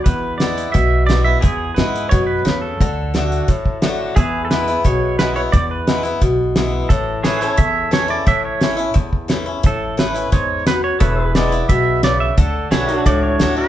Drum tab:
HH |x-xxx-x-|x-xxx-x-|x-xxx-x-|x-xxx-x-|
SD |--o---o-|--o---o-|--o---o-|--o---o-|
BD |o---o---|o---o---|o---oo--|o---o---|

HH |x-xxx-x-|x-xxx-x-|x-xxx-x-|x-xxx-x-|
SD |--o---o-|--o---o-|--o---o-|--o---o-|
BD |o---o---|o---o---|o---oo--|o---o---|

HH |x-xxx-x-|x-xxx-x-|
SD |--o---o-|--o---o-|
BD |o---o---|o---o---|